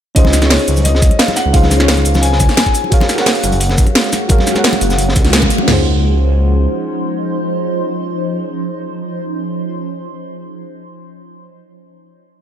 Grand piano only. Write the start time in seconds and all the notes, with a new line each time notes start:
0.15 D#5
0.50 C#5
0.84 D#5
1.19 F5
1.36 F#5
1.53 F5
2.22 G#5
2.56 G#5